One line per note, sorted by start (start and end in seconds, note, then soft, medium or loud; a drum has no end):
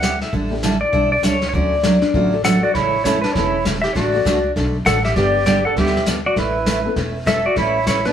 0.00 0.21 D2 medium
0.00 0.13 G3 medium
0.00 0.14 B3 medium
0.00 0.14 E4 medium
0.00 0.14 G4 medium
0.00 0.20 F#5 medium
0.00 snare medium
0.00 hi-hat pedal medium
0.21 0.33 E5 medium
0.21 snare soft
0.33 0.81 A1 medium
0.33 0.53 D3 medium
0.33 0.53 G3 medium
0.33 0.53 D4 medium
0.33 0.53 E4 medium
0.33 0.54 A4 medium
0.33 brush sweep medium
0.33 kick soft
0.50 0.90 A3 medium
0.50 0.91 D4 medium
0.50 0.91 E4 medium
0.50 0.91 G4 medium
0.63 0.74 D3 medium
0.63 0.75 G3 medium
0.63 0.75 D4 medium
0.63 0.75 E4 medium
0.63 0.75 A4 medium
0.63 snare medium
0.63 hi-hat pedal medium
0.81 1.11 D5 loud
0.92 1.19 B1 medium
0.92 1.13 D3 medium
0.92 1.13 G3 medium
0.92 1.13 D4 medium
0.92 1.13 E4 medium
0.92 1.14 A4 medium
0.92 brush sweep medium
0.92 kick soft
1.12 1.24 D5 medium
1.23 1.49 C#2 medium
1.23 1.35 D3 medium
1.23 1.35 G3 medium
1.23 1.35 D4 medium
1.23 1.35 E4 medium
1.23 1.35 A4 medium
1.23 1.48 C#5 medium
1.23 snare medium
1.23 hi-hat pedal medium
1.41 snare soft
1.49 1.54 C#5 medium
1.53 2.02 D2 medium
1.53 1.74 D3 medium
1.53 1.74 F#3 medium
1.53 1.74 A3 medium
1.53 1.74 C#4 medium
1.53 1.74 F#4 medium
1.53 2.41 D5 loud
1.53 brush sweep soft
1.53 kick soft
1.83 1.95 D3 medium
1.83 1.96 F#3 medium
1.83 1.96 A3 medium
1.83 1.96 C#4 medium
1.83 1.96 F#4 medium
1.83 snare medium
1.83 hi-hat pedal medium
2.02 2.14 D4 medium
2.02 snare soft
2.14 2.62 A1 medium
2.14 2.34 D3 medium
2.14 2.34 F#3 medium
2.14 2.31 A3 medium
2.14 2.35 A3 medium
2.14 2.31 C#4 medium
2.14 2.35 C#4 medium
2.14 2.31 D4 medium
2.14 2.32 F4 medium
2.14 2.31 F#4 medium
2.14 2.35 F#4 medium
2.14 brush sweep soft
2.14 kick soft
2.34 2.44 A4 medium
2.44 2.56 D3 medium
2.44 2.56 F#3 medium
2.44 2.56 A3 medium
2.44 2.56 C#4 medium
2.44 2.56 F#4 medium
2.44 2.61 A4 medium
2.44 2.68 A4 medium
2.44 2.62 A4 medium
2.44 2.62 F#5 medium
2.44 snare medium
2.44 hi-hat pedal medium
2.62 2.75 F#4 medium
2.62 2.74 D5 medium
2.74 3.23 A1 medium
2.74 2.95 C#3 medium
2.74 2.95 E3 medium
2.74 2.95 A3 medium
2.74 2.95 C#4 medium
2.74 3.04 E4 medium
2.74 2.95 A4 medium
2.74 3.03 C#5 loud
2.74 brush sweep soft
2.74 kick soft
2.74 snare soft
3.04 3.16 C#3 medium
3.04 3.16 E3 medium
3.04 3.16 A3 medium
3.04 3.16 C#4 medium
3.04 3.24 E4 medium
3.04 3.23 E4 medium
3.04 3.17 A4 medium
3.04 3.21 C#5 medium
3.04 kick soft
3.04 snare medium
3.04 hi-hat pedal medium
3.22 3.36 D4 medium
3.22 3.35 D4 medium
3.22 3.33 B4 medium
3.22 snare soft
3.33 3.83 E1 medium
3.33 3.55 C#3 medium
3.33 3.52 E3 medium
3.33 3.56 E3 medium
3.33 3.52 A3 medium
3.33 3.56 A3 medium
3.33 3.52 C#4 medium
3.33 3.56 C#4 medium
3.33 3.65 E4 medium
3.33 3.64 E4 medium
3.33 3.52 E4 medium
3.33 3.52 A4 medium
3.33 3.56 A4 medium
3.33 3.64 C#5 loud
3.33 brush sweep medium
3.33 kick soft
3.33 snare soft
3.65 3.77 C#3 medium
3.65 3.77 E3 medium
3.65 3.77 A3 medium
3.65 3.77 C#4 medium
3.65 3.77 A4 medium
3.65 kick soft
3.65 snare medium
3.65 hi-hat pedal medium
3.82 3.94 G4 medium
3.82 3.95 G4 medium
3.82 3.95 E5 medium
3.82 snare soft
3.93 4.20 A1 medium
3.93 4.15 D3 medium
3.93 4.15 A3 medium
3.93 4.15 D4 medium
3.93 4.52 F#4 medium
3.93 4.16 F#4 medium
3.93 4.16 A4 medium
3.93 4.51 D5 medium
3.93 brush sweep soft
3.93 kick soft
3.93 snare soft
4.14 4.24 F#3 medium
4.14 4.25 A3 medium
4.14 4.25 D4 medium
4.14 4.25 F#4 medium
4.14 4.25 A4 medium
4.25 4.51 C#2 medium
4.25 4.36 D3 medium
4.25 4.37 A3 medium
4.25 4.37 D4 medium
4.25 4.37 F#4 medium
4.25 4.37 A4 medium
4.25 kick soft
4.25 snare medium
4.25 hi-hat pedal medium
4.56 4.82 B1 medium
4.56 4.76 D3 medium
4.56 4.76 A3 medium
4.56 4.76 D4 medium
4.56 4.76 F#4 medium
4.56 4.76 A4 medium
4.56 brush sweep soft
4.56 kick soft
4.56 snare soft
4.85 5.12 A1 medium
4.85 4.96 D3 medium
4.85 4.97 A3 medium
4.85 4.97 D4 medium
4.85 4.97 F#4 medium
4.85 5.06 A4 medium
4.85 4.97 A4 medium
4.85 5.03 A4 medium
4.85 5.04 F#5 loud
4.85 kick soft
4.85 snare medium
4.85 hi-hat pedal medium
5.04 5.17 G4 medium
5.04 5.15 G4 medium
5.04 5.17 E5 medium
5.04 snare soft
5.16 5.64 G1 medium
5.16 5.36 D3 medium
5.16 6.00 G3 medium
5.16 5.36 G3 medium
5.16 6.00 B3 medium
5.16 5.36 B3 medium
5.16 6.00 D4 medium
5.16 5.37 D4 medium
5.16 5.44 G4 medium
5.16 5.45 G4 medium
5.16 6.00 G4 medium
5.16 5.37 G4 medium
5.16 6.00 B4 medium
5.16 5.45 D5 loud
5.16 brush sweep soft
5.16 kick soft
5.16 snare soft
5.46 5.57 D3 medium
5.46 5.58 G3 medium
5.46 5.58 B3 medium
5.46 5.58 D4 medium
5.46 5.63 G4 medium
5.46 5.64 G4 medium
5.46 5.58 G4 medium
5.46 5.63 D5 medium
5.46 kick soft
5.46 snare medium
5.46 hi-hat pedal medium
5.65 5.76 A4 medium
5.65 5.77 A4 medium
5.65 5.77 F#5 loud
5.76 6.25 D2 medium
5.76 5.96 D3 medium
5.76 5.97 G3 medium
5.76 5.97 B3 medium
5.76 5.97 D4 medium
5.76 6.05 G4 medium
5.76 5.97 G4 medium
5.76 6.05 G4 medium
5.76 6.05 E5 loud
5.76 brush sweep soft
5.76 kick soft
5.76 snare soft
5.86 snare soft
5.97 snare soft
6.06 6.18 D3 medium
6.06 6.18 G3 medium
6.06 6.18 B3 medium
6.06 6.18 D4 medium
6.06 6.18 G4 medium
6.06 kick soft
6.06 snare medium
6.06 hi-hat pedal medium
6.26 6.37 F#4 medium
6.26 6.37 D5 medium
6.36 6.85 A1 medium
6.36 6.56 A3 medium
6.36 6.57 C#4 medium
6.36 6.57 E4 medium
6.36 6.94 E4 medium
6.36 6.57 B4 medium
6.36 6.94 B4 medium
6.36 brush sweep soft
6.36 kick soft
6.36 snare soft
6.66 6.78 A3 medium
6.66 6.78 C#4 medium
6.66 6.78 E4 medium
6.66 6.78 B4 medium
6.66 kick soft
6.66 snare medium
6.66 hi-hat pedal medium
6.85 6.96 A3 medium
6.85 6.96 B3 medium
6.85 6.96 C#4 medium
6.85 6.96 E4 medium
6.85 6.96 A4 medium
6.96 7.45 E1 medium
6.96 7.17 A3 medium
6.96 7.17 C#4 soft
6.96 7.17 E4 medium
6.96 7.18 B4 medium
6.96 brush sweep soft
6.96 kick soft
6.96 snare soft
7.26 7.38 A3 medium
7.26 7.38 C#4 medium
7.26 7.38 E4 medium
7.26 7.48 A4 medium
7.26 7.45 A4 medium
7.26 7.38 B4 medium
7.26 7.46 E5 loud
7.26 kick soft
7.26 snare medium
7.26 hi-hat pedal medium
7.46 7.59 F#4 medium
7.46 7.57 F#4 medium
7.46 7.58 D5 medium
7.56 8.05 A1 medium
7.56 7.77 A3 medium
7.56 7.77 C#4 medium
7.56 7.77 E4 medium
7.56 7.87 E4 medium
7.56 7.86 E4 medium
7.56 7.77 B4 medium
7.56 7.86 C#5 medium
7.56 brush sweep soft
7.56 kick soft
7.56 snare soft
7.87 7.99 A3 medium
7.87 7.99 C#4 medium
7.87 8.05 E4 medium
7.87 7.99 E4 medium
7.87 8.06 E4 medium
7.87 7.99 B4 medium
7.87 8.06 C#5 medium
7.87 kick soft
7.87 snare medium
7.87 hi-hat pedal medium
8.05 8.13 A3 medium
8.05 8.13 B3 medium
8.05 8.13 C#4 medium
8.05 8.13 D4 medium
8.05 8.13 E4 medium
8.05 8.13 A4 medium
8.05 8.13 B4 medium
8.05 snare soft